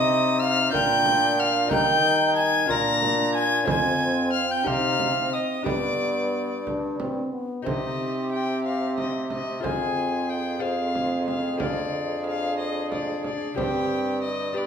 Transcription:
Already playing: C3 C4 D#4 G4 D#5 D#6
0.41 F5 F6
0.70 A#2 D4 F4 A#4 G6, frame drum
0.75 G5
1.06 frame drum
1.39 F#5 F6
1.44 F5
1.67 D#3 G3 D#4 A#4, frame drum
1.72 D#4 G5 G6
2.36 G#5 A5 G#6
2.66 A#2 D4 F4 A#4, frame drum
2.70 A#5 A#6
3.02 frame drum
3.35 G#5 G#6
3.64 F2 C4 F4 C5 G#5, frame drum
3.68 G#6
4.33 F5 F6
4.49 G5 G6
4.63 C3 D#4 G4 C5 F#5 F6, frame drum
4.70 F5
5.00 frame drum
5.16 C4
5.33 D#5 D#6
5.63 G2 B3 D4 G4 B4 D6, frame drum
5.67 D5
6.66 D4, frame drum
7.00 C4, frame drum
7.33 B3
7.62 C3 C4 D#4 G4 C5 D#5
7.66 frame drum
8.32 G5
8.64 F5
8.98 D#5, frame drum
9.30 D#5, frame drum
9.60 F2 C4 F4 G#4 C5 G#5, frame drum
9.65 G#4
10.29 G5
10.59 C4 F4 G#4 C5 F5
10.64 G#4
10.95 frame drum
11.28 F5, frame drum
11.57 D3 D4 G#4 D5 F5, frame drum
12.26 F5
12.58 D#5
12.91 D5, frame drum
13.24 D5, frame drum
13.54 G2 D3 C4 G4 C5 G5, frame drum
13.58 G4
14.23 D#5
14.53 B3 D4 G4 B4 D5

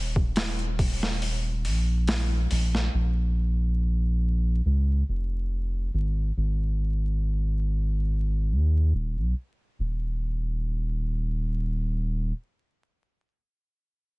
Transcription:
Already playing: D#1
0.16 kick
0.36 snare, open hi-hat
0.59 closed hi-hat
0.79 kick, open hi-hat
1.03 snare
1.22 open hi-hat
1.65 A#1, open hi-hat
2.08 snare, open hi-hat
2.51 A#1, open hi-hat
2.75 snare
2.94 A#1
4.65 C#2
5.08 F1
5.93 G#1
6.37 G#1
8.51 D#2
8.94 D#1
9.16 B1
9.79 D#1

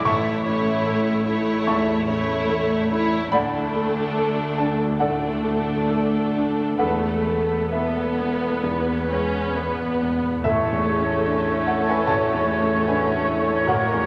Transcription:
0.05 A1 A2 A3 E4 C#5 E5 A5 C#6
0.45 A3 C#4 E4 C#5
0.86 A1 A2 A4
1.26 A3 E4 C#5
1.67 A1 E2 A2 E5 A5 C#6
2.08 A3 C#4 E4 C#5
2.49 A1 A2 A4
2.90 A3 E4 C#5
3.32 D2 A3 D4 A4 D5 F#5 B5
3.75 A3
4.18 A4
4.58 D4 A5
4.99 A2 A3 D4 A4 D5 F#5
5.44 A3
5.91 A4
6.36 D4
6.78 E1 E2 A3 B3 A4 B4 F#5
6.83 E2
7.27 A3
7.70 B3 A4 B4 E5
8.19 B3
8.63 E2 B3 B4
8.73 E2
8.81 E2
8.90 E2
8.98 E2
9.07 E2 C#4
9.12 E2 G#3
9.25 E2
9.34 E2
9.51 E2
9.55 B3 B4
9.60 E2
9.69 E2
9.77 E2
9.86 E2
9.94 E2
10.02 E2 B3
10.12 E2
10.21 E2
10.29 E2
10.36 E2
10.44 A1 A2 A3 C#4 E4 A4 C#5 E5 C#6
10.72 E2
10.87 G#4
10.99 C#4
11.26 D4 A4
11.53 C#4
11.67 A4 F#5
11.81 A3
11.89 B4 G#5
12.05 A1 F#4 A5
12.10 C#5
12.34 E2
12.48 E4
12.60 C#4
12.86 D4 F#4 B4 G#5
13.14 C#4
13.27 E4
13.41 A3
13.66 A1 F#3 A#3 F#4 A#4 F#5
13.93 E2

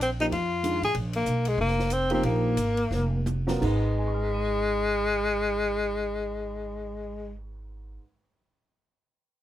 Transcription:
Already playing: A#1
0.01 C4, hi-hat pedal, ride
0.20 F3 A#3 D#4 G4, ride
0.32 F2 F4, ride
0.63 D#3 G#3 D4 F4, hi-hat pedal, ride
0.82 A1 G#4, ride
0.95 A#1, ride
1.13 A#3, ride
1.26 B1, hi-hat pedal
1.45 G#3, ride
1.58 F1 A#3
1.68 snare
1.79 snare
1.90 C4, hi-hat pedal, ride
2.10 F3 A#3 C4 D#4 G4, ride
2.23 A#1 A#3, ride
2.57 G#1, hi-hat pedal, ride
2.77 ride
2.91 F1, snare
3.26 hi-hat pedal, high tom
3.47 F#3 B3 F4 A#4, snare
3.61 G#1 G#2 G#3 D#4 B4 D#5, kick, crash
3.85 cymbal swell
3.99 G#5
4.07 C#6
4.14 F6
4.24 B6
4.34 D#7
4.45 G#7

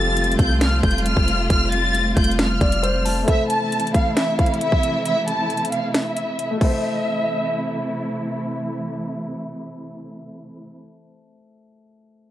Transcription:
Already playing: F1 C3 F3 G3 A3 F4 G4 A4 A6
0.17 closed hi-hat
0.24 closed hi-hat
0.32 closed hi-hat
0.39 C2 G6, kick, closed hi-hat
0.61 F6, finger snap, snare, closed hi-hat
0.83 F1 G6, kick, closed hi-hat
0.91 closed hi-hat
0.98 closed hi-hat
1.05 F6, closed hi-hat
1.17 F1, kick
1.28 closed hi-hat
1.50 F1 F6, kick, closed hi-hat
1.72 A6, closed hi-hat
1.95 closed hi-hat
2.17 F1 G6, kick, closed hi-hat
2.24 closed hi-hat
2.31 closed hi-hat
2.39 F6, finger snap, snare, closed hi-hat
2.61 F1 D5, kick, closed hi-hat
2.72 closed hi-hat
2.83 C5, closed hi-hat
3.05 A5, open hi-hat
3.23 A3 A4
3.28 C3 E3 A3 E4 C5 E5, kick, closed hi-hat
3.33 E5
3.50 A5, closed hi-hat
3.72 closed hi-hat
3.80 closed hi-hat
3.87 closed hi-hat
3.94 F5, kick, closed hi-hat
4.17 E5, finger snap, snare, closed hi-hat
4.39 F5, kick, closed hi-hat
4.46 closed hi-hat
4.54 closed hi-hat
4.61 E5, closed hi-hat
4.72 kick
4.83 closed hi-hat
5.05 E5, closed hi-hat
5.28 A5, closed hi-hat
5.50 closed hi-hat
5.57 closed hi-hat
5.65 closed hi-hat
5.72 F5, closed hi-hat
5.94 E5, finger snap, snare, closed hi-hat
6.17 closed hi-hat
6.39 closed hi-hat
6.51 A3
6.58 C3 E3 A3 E4 A4 E5, kick, crash
6.64 C5
6.71 E5

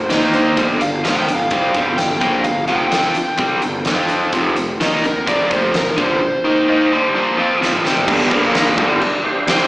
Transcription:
Already playing: C5
0.10 D#2 D#3 A#3 D#4, snare, closed hi-hat
0.33 C5, closed hi-hat
0.57 G1 G2 D3 G3 C5, kick, closed hi-hat
0.81 G1 G2 D3 F5, closed hi-hat
1.04 F1 F2 C3 F3 F5, snare, closed hi-hat
1.19 G5
1.28 G1 G2 D3, closed hi-hat
1.35 F5
1.51 C2 C3 G3 C4, kick, closed hi-hat
1.74 G1 G2 D3 G3, kick, closed hi-hat
1.98 G1 G2 D3 G5, snare, closed hi-hat
2.21 A#1 A#2 F3 A#3 G5, kick, closed hi-hat
2.44 G1 G2 D3 F5, kick, closed hi-hat
2.68 F1 F2 C3 F3 G5, closed hi-hat
2.91 F2 F3 C4 F4, snare, closed hi-hat
3.15 muted overdriven electric guitar stroke, muted picked electric bass stroke, closed hi-hat
3.38 C2 C3 G3 C4, kick, closed hi-hat
3.62 G1 G2 D3, closed hi-hat
3.85 F2 F3 C4 F4, snare, closed hi-hat
4.09 closed hi-hat
4.33 F1 F2 C3 F3, kick, closed hi-hat
4.56 F1 F2 C3, closed hi-hat
4.80 D#2 D#3 A#3 D#4, snare, closed hi-hat
5.04 F1 F2 C3 A#4, closed hi-hat
5.27 A#1 A#2 F3 A#3 D5, kick, closed hi-hat
5.50 F1 F2 C3 F3 C5, kick, closed hi-hat
5.74 F1 F2 C3 A#4, snare, closed hi-hat
5.97 G1 G2 D3 G3 C5, kick, closed hi-hat
6.21 F2 C3
6.44 D#3 A#3 D#4
6.68 D#3 A#3 D#4
6.91 G2 D3 G3
7.15 A#2 F3 A#3
7.37 F3 C4 F4
7.61 F2 C3 F3, snare
7.73 mid tom
7.84 C3 G3 C4, snare
7.97 floor tom
8.07 G1 G2 D3 G3 D4 G4 A#4, kick, crash
8.29 A#1 A#2 F3 A#3 F4 A#4, kick
8.54 snare, crash
8.77 G1 G2 D3 G3 D4 G4 A#4, kick
9.01 muted picked electric bass stroke, muted overdriven electric guitar stroke, crash
9.24 D4 G4 C5, muted picked electric bass stroke, muted overdriven electric guitar stroke
9.47 C2 C3 G3 C4, snare, crash

